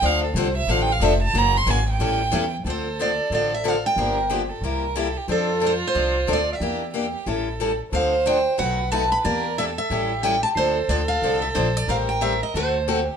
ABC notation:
X:1
M:4/4
L:1/16
Q:"Swing" 1/4=182
K:Aphr
V:1 name="Steel-string acoustic guitar"
z16 | z16 | [K:Dm] c4 d4 d2 e2 f2 g2- | g6 z8 z2 |
A4 c2 c6 d2 e2- | e6 z8 z2 | f4 g4 ^f4 a2 =b2 | d4 e2 e6 g2 a2 |
c4 d2 f4 e2 c2 d2 | f2 g2 e2 _e2 c6 z2 |]
V:2 name="Violin"
f2 A2 c2 e2 (3f2 g2 f2 e2 a2 | b2 c'2 _a2 g8- g z | [K:Dm] A16 | B4 G2 A2 B4 A2 G2 |
F16 | G4 G4 A6 z2 | c8 =B8 | B4 A4 G8 |
A16 | B8 A4 G4 |]
V:3 name="Steel-string acoustic guitar"
[D,F,CDA]2 z2 [D,F,CDA]2 z2 [D,F,CDA]2 z2 [D,F,CDA]2 z2 | [_D,_F,B,_D_G]2 z2 [D,F,B,DG]2 z2 [E,=G,^CEA]2 z2 [E,G,CEA]2 z2 | [K:Dm] [D,F,CDA]2 z2 [D,F,CDA]2 z2 [D,F,CDA]2 z2 [D,F,CDA]2 z2 | [D,F,B,DG]2 z2 [D,F,B,DG]2 z2 [C,G,B,EG]2 z2 [C,G,B,EG]2 z2 |
[F,CDA]2 z2 [F,CDA]2 z2 [F,CDA]2 z2 [F,CDA]2 z2 | [E,B,DG]2 z2 [E,B,DG]2 z2 [E,G,^CEA]2 z2 [E,G,CEA]2 z2 | [D,F,CDA]2 z2 [D,F,CDA]2 z2 [=B,,^F,A,^D^F]2 z2 [B,,F,A,DF]2 z2 | [E,B,DG]2 z2 [E,B,DG]2 z2 [E,G,^CEA]2 z2 [E,G,CEA]2 z2 |
[D,F,CDA]2 z2 [D,F,CDA]2 z2 [D,F,CDA]2 z2 [D,F,CDA]2 z2 | [_E,G,CGA]2 z2 [E,G,CGA]2 z2 [D,A,C^FA]2 z2 [D,A,CFA]2 z2 |]
V:4 name="Upright bass" clef=bass
D,,4 C,,4 A,,,4 F,,,4 | _G,,,4 _A,,,4 =A,,,4 E,,4 | [K:Dm] D,,8 A,,,8 | G,,,8 C,,8 |
F,,8 C,,4 D,,4 | E,,8 A,,,8 | D,,8 =B,,,8 | E,,8 A,,,8 |
D,,4 D,,4 C,,4 B,,,4 | A,,,8 D,,8 |]